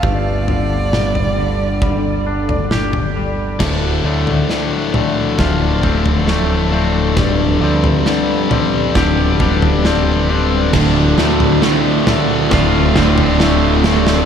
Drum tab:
CC |----------------|x---------------|----------------|x---------------|
SD |----o-------o---|o---o---o---o---|o---o---o---o---|o-o-o-o-o-o-o-oo|
T2 |----o-------o---|------o---------|------o---------|------o---------|
FT |o-o--o--o--o-o--|o--o--o-o--o----|o--o--o-o--o----|o--o--o-o--o----|
BD |o-------o-------|o-------o-o-----|o-------o-o-----|o-------o-o-----|